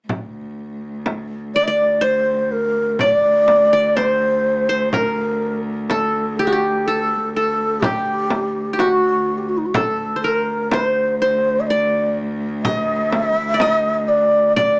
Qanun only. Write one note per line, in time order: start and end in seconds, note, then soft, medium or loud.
1.56 1.67 D5 medium
1.67 2.66 D5 medium
2.01 3.07 C5 medium
3.01 3.72 D5 medium
3.73 4.71 D5 medium
3.97 4.69 C5 medium
4.69 5.75 C5 medium
4.94 5.97 A#4 medium
5.91 6.87 A4 medium
6.39 6.52 G4 medium
6.47 6.58 F#4 medium
6.52 7.78 G4 medium
6.88 7.36 A4 medium
7.36 8.54 A4 medium
7.84 8.73 G4 medium
8.73 8.86 G4 soft
8.80 10.10 F#4 medium
9.75 10.30 A4 medium
10.16 10.73 C5 soft
10.24 11.37 A#4 medium
10.73 11.21 C5 medium
11.22 12.27 C5 medium
11.70 12.71 D5 medium
12.65 13.60 D#5 medium
13.54 13.67 D5 medium
13.61 14.56 D#5 medium
14.56 14.80 D5 medium